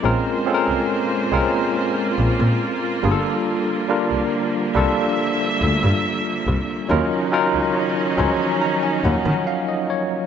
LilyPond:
<<
  \new Staff \with { instrumentName = "Tine electric piano" } { \time 4/4 \key g \phrygian \tempo 4 = 70 << { r1 | r1 | r4. c'''8 bes''16 aes''16 ges''8 f''16 ees''16 des''8 | } \\ { <aes c' des' f' bes'>8 <aes c' des' f' a' bes'>8 r8 <aes c' des' f' bes'>4. r8 <g bes d' f' aes' a'>8~ | <g bes d' f' aes' a'>8 <g bes d' f' bes'>8 r8 <g bes d' f' a'>4. r4 | <ges des' ees' f' bes'>8 <ges des' ees' f' bes'>8 r8 <f ges des' ees' des''>4. r4 | } >> }
  \new Staff \with { instrumentName = "String section" } { \clef bass \time 4/4 \key g \phrygian << { <bes, aes bes c''>2.~ <bes, aes bes c''>8 <d f g>8~ | <d f g>1 | <des ees des'>1 | } \\ { f'1~ | f'4. e''2~ e''8 | ees'1 | } >> }
  \new Staff \with { instrumentName = "Double bass" } { \clef bass \time 4/4 \key g \phrygian bes,,8. c,16 r8 c,8. r16 bes,,16 bes,16 r8 g,,8~ | g,,8. c,16 r8 c,8. r16 d,16 g,16 r8 c,8 | ees,8. des,16 r8 des,8. r16 ees,16 ees16 r4 | }
>>